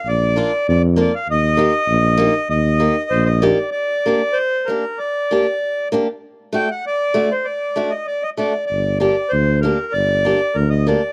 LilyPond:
<<
  \new Staff \with { instrumentName = "Accordion" } { \time 2/4 \key ees \major \tempo 4 = 97 d''4 d''8 d''16 f''16 | ees''2 | ees''4 c''16 ees''16 d''8 | \key g \minor d''4 c''8 bes'8 |
d''4. r8 | r8 g''16 fis''16 d''8. c''16 | d''8. ees''16 d''16 ees''16 d''8 | d''8 d''8 c''8 bes'8 |
d''4 bes'16 ees''16 d''8 | }
  \new Staff \with { instrumentName = "Steel-string acoustic guitar" } { \time 2/4 \key ees \major r8 <bes d' f'>8 r8 <bes d' f'>8 | r8 <bes ees' g'>8 r8 <bes ees' g'>8 | r8 <bes ees' g'>8 r8 <bes ees' g'>8 | \key g \minor r8 <bes d' g'>8 r8 <bes d' g'>8 |
r8 <bes d' g'>8 r8 <bes d' g'>8 | r8 <a d' fis'>8 r8 <a d' fis'>8 | r8 <a d' fis'>8 r8 <a d' fis'>8 | r8 <bes d' g'>8 r8 <bes d' g'>8 |
r8 <bes d' g'>8 r8 <bes d' g'>8 | }
  \new Staff \with { instrumentName = "Tuba" } { \clef bass \time 2/4 \key ees \major bes,,4 f,4 | ees,4 bes,,4 | ees,4 bes,,4 | \key g \minor r2 |
r2 | r2 | r2 | g,,4 d,4 |
g,,4 d,4 | }
>>